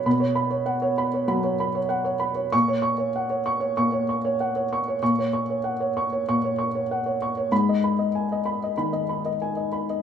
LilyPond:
<<
  \new Staff \with { instrumentName = "Felt piano" } { \time 4/4 \key fis \mixolydian \tempo 4 = 96 << { r1 | cis'''8 r2. r8 | r1 | b''8 r2. r8 | } \\ { <cis'' b''>16 cis''16 b''16 cis''16 fis''16 cis''16 b''16 cis''16 b''16 cis''16 b''16 cis''16 fis''16 cis''16 b''16 cis''16 | r16 cis''16 cis'''16 cis''16 fis''16 cis''16 cis'''16 cis''16 cis'''16 cis''16 cis'''16 cis''16 fis''16 cis''16 cis'''16 cis''16 | cis'''16 cis''16 cis'''16 cis''16 fis''16 cis''16 cis'''16 cis''16 cis'''16 cis''16 cis'''16 cis''16 fis''16 cis''16 cis'''16 cis''16 | r16 dis''16 b''16 dis''16 gis''16 dis''16 b''16 dis''16 b''16 dis''16 b''16 dis''16 gis''16 dis''16 b''16 dis''16 | } >> }
  \new Staff \with { instrumentName = "Felt piano" } { \clef bass \time 4/4 \key fis \mixolydian b,2 fis4 r4 | ais,2 ais,2 | ais,2 ais,2 | gis,2 dis4 r4 | }
>>